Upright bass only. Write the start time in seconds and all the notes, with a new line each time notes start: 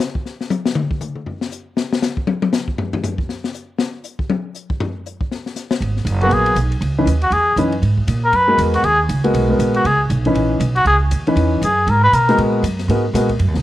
5.80 G#1
6.05 F#1
6.30 A#1
6.55 B1
6.81 C#2
7.05 D#2
7.30 E2
7.56 F#2
7.82 G#2
8.07 A#2
8.32 F#2
8.58 E2
8.83 D#2
9.09 C#2
9.34 B1
9.59 A#1
9.85 C#2
10.10 B1
10.34 A#1
10.60 B1
10.85 C#2
11.11 D#2
11.36 E2
11.62 F#2
11.87 G#2
12.12 B2
12.38 A#2
12.62 F#2
12.88 G#2
13.13 A#2
13.39 F#2
13.48 D#2
13.56 B1